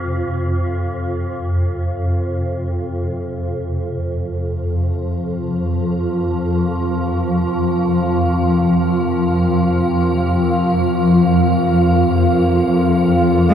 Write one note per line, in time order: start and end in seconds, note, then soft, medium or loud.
0.00 3.89 F2 medium
0.00 4.02 C3 medium
0.00 13.54 C4 medium
0.00 13.54 F4 medium
0.00 13.54 F5 medium
3.89 13.54 F2 medium
3.89 13.54 F3 medium
3.89 13.54 A#4 medium
13.50 13.54 G#3 loud